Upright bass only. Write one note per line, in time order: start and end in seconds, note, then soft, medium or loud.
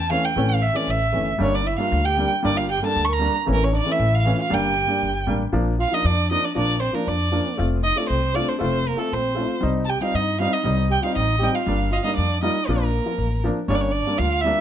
0.00 0.15 E2 medium
0.36 0.68 A1 medium
0.88 1.11 A1 medium
1.15 1.38 G1 medium
1.40 1.71 G1 medium
1.92 2.23 D2 medium
2.45 2.75 G1 medium
2.96 3.27 D2 medium
3.48 3.79 A1 medium
3.99 4.30 A1 loud
4.51 4.82 G1 medium
5.02 5.25 G1 medium
5.27 5.50 A1 medium
5.53 5.84 A#1 medium
6.04 6.35 F2 medium
6.56 6.87 A#1 medium
7.07 7.38 F2 medium
7.59 7.90 F1 medium
8.10 8.41 C2 medium
8.61 8.92 F1 medium
9.12 9.43 A#1 medium
9.63 9.93 C2 medium
10.14 10.45 G2 medium
10.65 10.95 C2 loud
11.16 11.46 A1 medium
11.67 11.97 G1 medium
12.18 12.48 F2 medium
12.68 12.98 A#1 medium
13.18 13.48 A1 medium
13.68 13.98 G1 medium
14.19 14.49 D2 medium